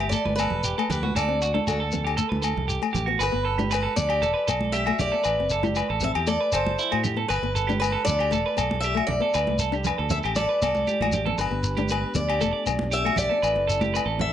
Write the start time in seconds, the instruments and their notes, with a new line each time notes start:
Already playing: fingered electric bass G1
0.00 clean electric guitar G4, low agogo
0.09 nylon-string guitar A3, clean electric guitar A4, steel-string acoustic guitar D5, shekere
0.25 fingered electric bass G1, clean electric guitar B4, high conga
0.36 nylon-string guitar B3, clean electric guitar A4, steel-string acoustic guitar B4, low agogo, shekere
0.50 fingered electric bass E1, low conga
0.64 clean electric guitar G4, shekere
0.78 nylon-string guitar A3, clean electric guitar A4, low agogo
0.90 fingered electric bass D2, clean electric guitar G4, steel-string acoustic guitar B4, low conga, shekere
1.03 nylon-string guitar B3, clean electric guitar F#4, high conga
1.15 fingered electric bass D2, clean electric guitar A4, steel-string acoustic guitar D5, low agogo, shekere
1.28 nylon-string guitar C4
1.42 clean electric guitar F#4, shekere
1.54 nylon-string guitar D4, clean electric guitar A4, high conga
1.67 fingered electric bass D2, clean electric guitar F#4, steel-string acoustic guitar A4, low agogo, shekere
1.80 clean electric guitar A4
1.92 nylon-string guitar B3, low conga, shekere
2.04 clean electric guitar G4, low agogo
2.17 nylon-string guitar A3, clean electric guitar A4, shekere
2.29 fingered electric bass D2, clean electric guitar B4, high conga
2.42 clean electric guitar A4, low agogo, shekere
2.57 fingered electric bass C2, low conga
2.68 clean electric guitar G4, shekere
2.82 nylon-string guitar A3, low agogo
2.93 fingered electric bass A1, clean electric guitar G4, low conga, shekere
3.06 nylon-string guitar B3, clean electric guitar F#4
3.19 fingered electric bass G1, clean electric guitar B4, steel-string acoustic guitar B4, low agogo, shekere
3.32 fingered electric bass G1, nylon-string guitar B3
3.45 clean electric guitar A4
3.58 nylon-string guitar D4, clean electric guitar G4, high conga, shekere
3.71 clean electric guitar B4, steel-string acoustic guitar B4, low agogo, shekere
3.83 clean electric guitar A4
3.96 fingered electric bass D2, nylon-string guitar B3, steel-string acoustic guitar D5, low conga, shekere
4.09 clean electric guitar G4, low agogo
4.22 fingered electric bass E1, clean electric guitar A4, muted nylon-string guitar stroke, shekere
4.34 clean electric guitar B4
4.48 fingered electric bass B1, clean electric guitar A4, muted nylon-string guitar stroke, low agogo, shekere
4.61 high conga
4.72 clean electric guitar G4, steel-string acoustic guitar E5, shekere
4.86 nylon-string guitar A3, clean electric guitar F#4, low agogo
4.99 fingered electric bass B1, clean electric guitar G4, steel-string acoustic guitar D5, low conga, shekere
5.12 nylon-string guitar B3, clean electric guitar A4
5.24 fingered electric bass A1, clean electric guitar B4, low agogo, shekere
5.39 fingered electric bass F#1, nylon-string guitar C4
5.50 clean electric guitar A4, shekere
5.63 nylon-string guitar E4, clean electric guitar G4, high conga, shekere
5.75 clean electric guitar B4, low agogo, shekere
5.90 fingered electric bass A1, clean electric guitar A4
6.00 nylon-string guitar C4, steel-string acoustic guitar E5, low conga, shekere
6.15 fingered electric bass E2, clean electric guitar G4, low agogo
6.27 nylon-string guitar A3, clean electric guitar A4, steel-string acoustic guitar D5, shekere
6.40 clean electric guitar B4
6.52 fingered electric bass F#1, clean electric guitar A4, steel-string acoustic guitar C5, low agogo, shekere
6.67 high conga
6.78 clean electric guitar E4, shekere
6.91 fingered electric bass A2, nylon-string guitar A3, clean electric guitar F#4, low agogo
7.03 clean electric guitar G4, low conga, shekere
7.16 nylon-string guitar B3, clean electric guitar A4
7.28 fingered electric bass G1, steel-string acoustic guitar B4, clean electric guitar B4, low agogo, shekere
7.42 fingered electric bass G1, nylon-string guitar B3
7.55 clean electric guitar A4, shekere
7.67 nylon-string guitar D4, clean electric guitar G4, high conga, shekere
7.80 steel-string acoustic guitar B4, clean electric guitar B4, low agogo, shekere
7.92 clean electric guitar A4
8.05 fingered electric bass D2, nylon-string guitar B3, steel-string acoustic guitar D5, low conga, shekere
8.19 clean electric guitar G4, low agogo
8.31 fingered electric bass E1, nylon-string guitar A3, clean electric guitar A4, shekere
8.46 clean electric guitar B4
8.57 fingered electric bass B1, nylon-string guitar B3, clean electric guitar A4, low agogo, shekere
8.71 high conga
8.80 clean electric guitar G4, steel-string acoustic guitar E5, shekere
8.95 nylon-string guitar A3, clean electric guitar F#4, low agogo
9.07 fingered electric bass B1, steel-string acoustic guitar D5, muted clean electric guitar stroke, low conga
9.20 nylon-string guitar B3, clean electric guitar A4
9.34 fingered electric bass D2, clean electric guitar B4, low agogo, shekere
9.47 fingered electric bass C2, nylon-string guitar A3, high conga
9.59 clean electric guitar A4, shekere
9.72 nylon-string guitar D4, clean electric guitar G4, shekere
9.84 clean electric guitar B4, low conga, low agogo, shekere
9.98 fingered electric bass D2, clean electric guitar A4
10.10 nylon-string guitar B3, steel-string acoustic guitar E5, low conga, shekere
10.23 fingered electric bass A1, clean electric guitar G4, low agogo, shekere
10.35 nylon-string guitar F#3, clean electric guitar A4, steel-string acoustic guitar D5, high conga, shekere
10.49 clean electric guitar B4
10.62 fingered electric bass C2, nylon-string guitar B3, clean electric guitar A4, steel-string acoustic guitar D5, low agogo, shekere
10.75 high conga, shekere
10.87 clean electric guitar G4, high conga, shekere
11.00 fingered electric bass A1, nylon-string guitar A3, clean electric guitar F#4, high conga, low agogo
11.12 clean electric guitar G4, low conga, shekere
11.26 nylon-string guitar B3, clean electric guitar A4, low conga
11.38 fingered electric bass G1, tonewheel organ B3 D4 G4, steel-string acoustic guitar B4, muted clean electric guitar stroke, low agogo, shekere
11.51 fingered electric bass G1, nylon-string guitar B3
11.63 muted clean electric guitar stroke, shekere
11.77 nylon-string guitar D4, clean electric guitar G4, high conga, shekere
11.89 steel-string acoustic guitar B4, clean electric guitar B4, low agogo, shekere
12.15 fingered electric bass D2, nylon-string guitar B3, steel-string acoustic guitar D5, low conga, shekere
12.29 clean electric guitar G4, low agogo
12.41 fingered electric bass E1, nylon-string guitar A3, clean electric guitar A4, shekere
12.53 clean electric guitar D5
12.66 fingered electric bass B1, nylon-string guitar B3, muted clean electric guitar stroke, low agogo, shekere
12.79 high conga
12.91 clean electric guitar G4, steel-string acoustic guitar E5, shekere
13.04 nylon-string guitar A3, clean electric guitar F#4, low agogo
13.16 fingered electric bass B1, clean electric guitar G4, steel-string acoustic guitar D5, low conga, shekere
13.29 nylon-string guitar B3, clean electric guitar A4
13.42 fingered electric bass A1, tonewheel organ C4 E4 A4, clean electric guitar B4, low agogo, shekere
13.56 fingered electric bass F#1, muted nylon-string guitar stroke
13.67 clean electric guitar A4, shekere
13.81 nylon-string guitar E4, clean electric guitar G4, high conga, shekere
13.94 clean electric guitar B4, low agogo, shekere
14.06 fingered electric bass A1, clean electric guitar A4
14.19 steel-string acoustic guitar E5, muted nylon-string guitar stroke, low conga